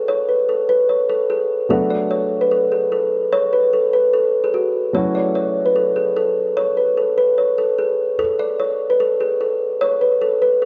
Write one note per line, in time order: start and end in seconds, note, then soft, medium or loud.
0.08 0.26 C#5 loud
0.29 0.47 B4 medium
0.49 0.67 A4 medium
0.69 0.87 B4 medium
0.89 1.07 C#5 medium
1.09 1.28 A4 medium
1.30 1.68 G#4 medium
1.69 4.90 F#3 medium
1.69 4.90 A3 medium
1.69 4.91 B3 medium
1.69 4.91 D4 medium
1.69 4.92 F#4 medium
1.69 1.88 A4 loud
1.90 2.09 D5 medium
2.11 2.39 C#5 medium
2.41 2.50 B4 medium
2.51 2.70 A4 medium
2.72 2.90 G#4 medium
2.92 3.30 A4 medium
3.33 3.51 C#5 loud
3.53 3.71 B4 medium
3.73 3.91 A4 medium
3.93 4.11 B4 medium
4.13 4.42 A4 medium
4.44 4.53 G#4 medium
4.54 4.72 F#4 medium
4.93 8.14 F#3 medium
4.93 8.15 A3 medium
4.93 8.15 C#4 medium
4.93 8.15 E4 medium
4.93 8.16 F#4 medium
4.93 5.13 C#5 loud
5.15 5.33 D5 medium
5.35 5.64 C#5 medium
5.66 5.75 B4 medium
5.76 5.94 A4 medium
5.96 6.14 G#4 medium
6.17 6.55 A4 medium
6.57 6.75 C#5 loud
6.77 6.95 B4 medium
6.97 7.16 A4 medium
7.18 7.36 B4 medium
7.38 7.56 C#5 medium
7.58 7.76 A4 medium
7.78 8.17 G#4 medium
8.19 8.37 A4 loud
8.39 8.57 D5 medium
8.60 8.88 C#5 medium
8.90 8.99 B4 medium
9.00 9.18 A4 medium
9.20 9.39 G#4 medium
9.41 9.79 A4 medium
9.81 9.99 C#5 loud
10.01 10.19 B4 medium
10.22 10.40 A4 medium
10.42 10.60 B4 medium
10.62 10.65 A4 medium